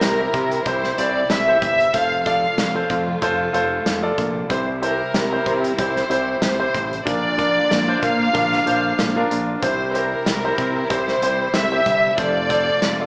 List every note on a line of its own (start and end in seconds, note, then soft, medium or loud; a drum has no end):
0.00 0.28 C2 medium
0.00 0.30 C3 soft
0.00 1.91 C3 medium
0.00 1.93 E3 medium
0.00 1.93 G3 medium
0.00 0.20 E4 medium
0.00 1.93 E4 medium
0.00 0.20 G4 medium
0.00 0.67 A#4 medium
0.00 0.67 C5 medium
0.00 snare loud
0.00 closed hi-hat medium
0.20 0.53 E4 medium
0.20 0.53 G4 medium
0.20 0.54 A#4 medium
0.34 0.60 C3 loud
0.34 kick medium
0.34 closed hi-hat soft
0.52 closed hi-hat medium
0.66 0.92 C2 loud
0.66 0.90 E4 medium
0.66 0.90 G4 medium
0.66 0.98 C5 medium
0.66 0.90 C5 medium
0.66 kick medium
0.66 closed hi-hat medium
0.84 snare soft
0.98 1.24 C2 loud
0.98 1.32 E4 medium
0.98 1.32 G4 medium
0.98 1.33 C5 medium
0.98 1.30 D5 medium
0.98 closed hi-hat medium
1.30 1.56 C2 loud
1.30 1.60 E5 medium
1.30 snare loud
1.30 closed hi-hat medium
1.48 1.81 E4 medium
1.48 1.81 G4 medium
1.48 1.82 C5 medium
1.61 1.88 G1 medium
1.61 1.91 E5 medium
1.61 kick medium
1.61 closed hi-hat medium
1.80 closed hi-hat soft
1.92 2.46 F1 medium
1.92 7.01 C3 medium
1.92 4.47 F3 medium
1.92 4.46 A3 medium
1.92 4.47 F4 medium
1.92 2.17 F4 medium
1.92 2.17 A4 medium
1.92 2.18 C5 medium
1.92 2.24 F5 loud
1.92 kick medium
1.92 closed hi-hat medium
2.25 2.60 F4 medium
2.25 2.60 A4 medium
2.25 2.60 D5 medium
2.25 2.86 F5 medium
2.25 kick medium
2.25 closed hi-hat medium
2.57 2.84 F1 medium
2.57 snare loud
2.57 closed hi-hat medium
2.75 3.09 F4 medium
2.75 3.09 A4 soft
2.75 3.09 C5 medium
2.90 3.16 F2 medium
2.90 kick medium
2.90 closed hi-hat soft
3.22 3.48 F1 medium
3.22 3.46 F4 medium
3.22 3.46 A4 medium
3.22 3.46 C5 medium
3.22 kick medium
3.22 closed hi-hat medium
3.53 3.80 F1 medium
3.53 3.88 F4 medium
3.53 3.88 A4 medium
3.53 3.88 C5 medium
3.53 closed hi-hat medium
3.86 4.12 F1 loud
3.86 snare medium
3.86 closed hi-hat medium
4.02 4.37 F4 medium
4.02 4.37 A4 medium
4.02 4.37 D5 medium
4.18 4.44 A#1 medium
4.18 kick medium
4.18 closed hi-hat medium
4.49 5.03 C2 loud
4.49 5.42 C3 medium
4.49 7.04 E3 medium
4.49 7.04 G3 medium
4.49 4.73 E4 medium
4.49 7.04 E4 medium
4.49 4.74 G4 medium
4.49 4.65 C5 medium
4.49 4.74 C5 medium
4.49 kick medium
4.49 closed hi-hat medium
4.82 5.16 E4 medium
4.82 5.16 G4 medium
4.82 5.75 A#4 medium
4.82 5.16 C5 medium
4.82 closed hi-hat medium
5.14 5.40 C2 medium
5.14 snare loud
5.14 closed hi-hat medium
5.32 5.66 E4 medium
5.32 5.66 G4 medium
5.32 5.66 C5 medium
5.46 5.73 C3 medium
5.46 kick medium
5.46 closed hi-hat soft
5.64 closed hi-hat soft
5.78 6.05 C2 loud
5.78 6.02 E4 medium
5.78 6.02 G4 medium
5.78 6.02 C5 medium
5.78 6.39 C5 medium
5.78 kick medium
5.78 closed hi-hat medium
5.96 snare soft
6.09 6.36 C2 medium
6.09 6.44 E4 medium
6.09 6.44 G4 medium
6.09 6.44 C5 medium
6.09 closed hi-hat medium
6.42 6.68 C2 loud
6.42 7.03 C5 medium
6.42 snare medium
6.42 closed hi-hat medium
6.59 6.93 E4 medium
6.59 6.93 G4 medium
6.59 6.93 C5 medium
6.74 7.01 A1 medium
6.74 kick medium
6.74 closed hi-hat medium
6.93 closed hi-hat soft
7.05 7.59 A#1 loud
7.05 7.98 A#2 medium
7.05 9.60 D3 medium
7.05 9.60 F3 medium
7.05 9.60 A#3 medium
7.05 7.29 D4 medium
7.05 9.59 F4 medium
7.05 7.30 F4 medium
7.05 7.30 A#4 medium
7.05 7.99 D5 medium
7.05 kick medium
7.05 closed hi-hat medium
7.38 7.72 D4 medium
7.38 7.72 F4 medium
7.38 7.72 A#4 medium
7.38 kick medium
7.38 closed hi-hat medium
7.70 7.97 A#1 medium
7.70 snare medium
7.70 closed hi-hat medium
7.88 8.21 D4 medium
7.88 8.22 F4 medium
7.88 8.22 C5 medium
8.03 8.29 A#2 medium
8.03 9.31 F5 medium
8.03 kick medium
8.03 closed hi-hat soft
8.33 8.61 A#1 medium
8.33 8.57 D4 medium
8.33 8.58 F4 medium
8.33 8.58 A#4 medium
8.33 kick medium
8.33 closed hi-hat medium
8.53 snare soft
8.66 8.93 A#1 loud
8.66 9.00 D4 medium
8.66 9.00 F4 medium
8.66 9.00 C5 medium
8.66 closed hi-hat medium
8.98 9.24 A#1 loud
8.98 snare loud
8.98 closed hi-hat medium
9.16 9.50 D4 medium
9.16 9.50 F4 medium
9.16 9.50 A#4 medium
9.31 9.57 A#1 medium
9.31 closed hi-hat medium
9.62 10.15 C2 loud
9.62 13.06 C3 medium
9.62 10.55 C3 medium
9.62 12.15 E3 medium
9.62 12.16 G3 medium
9.62 9.86 E4 medium
9.62 12.16 E4 medium
9.62 9.86 G4 medium
9.62 9.92 C5 medium
9.62 9.86 C5 medium
9.62 kick medium
9.62 closed hi-hat medium
9.94 10.28 E4 medium
9.94 10.28 G4 medium
9.94 10.90 A#4 medium
9.94 10.28 C5 medium
9.94 closed hi-hat medium
10.26 10.53 C2 loud
10.26 snare medium
10.26 closed hi-hat medium
10.44 10.78 E4 medium
10.44 10.78 G4 medium
10.44 10.78 C5 medium
10.58 10.84 C3 loud
10.58 kick medium
10.58 closed hi-hat soft
10.89 11.17 C2 loud
10.89 11.13 E4 medium
10.89 11.14 G4 medium
10.89 11.14 C5 medium
10.89 11.55 C5 medium
10.89 kick medium
10.89 closed hi-hat medium
11.08 snare soft
11.22 11.49 C2 loud
11.22 11.56 E4 medium
11.22 11.56 G4 medium
11.22 11.57 C5 medium
11.22 closed hi-hat medium
11.54 11.80 C2 loud
11.54 12.19 E5 medium
11.54 snare medium
11.54 closed hi-hat medium
11.71 12.05 E4 medium
11.71 12.05 G4 medium
11.71 12.06 C5 medium
11.86 12.12 G1 medium
11.86 kick medium
11.86 closed hi-hat medium
12.17 12.71 F1 medium
12.17 13.06 F3 medium
12.17 13.06 A3 medium
12.17 12.41 F4 medium
12.17 13.06 F4 medium
12.17 12.42 A4 medium
12.17 12.42 C5 medium
12.17 13.06 D5 loud
12.17 kick medium
12.17 closed hi-hat medium
12.50 12.84 F4 medium
12.50 12.84 A4 medium
12.50 12.84 C5 medium
12.50 kick medium
12.50 closed hi-hat medium
12.82 13.06 F1 medium
12.82 snare medium
12.82 closed hi-hat medium
13.00 13.06 F4 medium
13.00 13.06 A4 soft
13.00 13.06 D5 medium